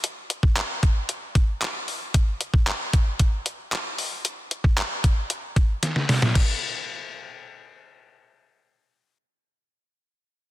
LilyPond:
\new DrumStaff \with { instrumentName = "Drums" } \drummode { \time 4/4 \tempo 4 = 114 hh8 hh16 bd16 <hc hh>8 <hh bd>8 hh8 <hh bd>8 <hc hh>8 hho8 | <hh bd>8 hh16 bd16 <hc hh>8 <hh bd>8 <hh bd>8 hh8 <hc hh>8 hho8 | hh8 hh16 bd16 <hc hh>8 <hh bd>8 hh8 <hh bd>8 <hh sn>16 sn16 <hho sn>16 sn16 | <cymc bd>4 r4 r4 r4 |
r4 r4 r4 r4 | }